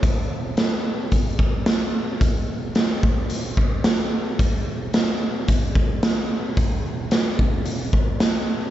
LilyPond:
\new DrumStaff \with { instrumentName = "Drums" } \drummode { \time 4/4 \tempo 4 = 110 <hh bd>4 <hh sn>4 <hh bd>8 bd8 <hh sn>4 | <hh bd>4 <hh sn>8 bd8 hh8 bd8 <hh sn>4 | <hh bd>4 <hh sn>4 <hh bd>8 bd8 <hh sn>4 | <hh bd>4 <hh sn>8 bd8 hh8 bd8 <hh sn>4 | }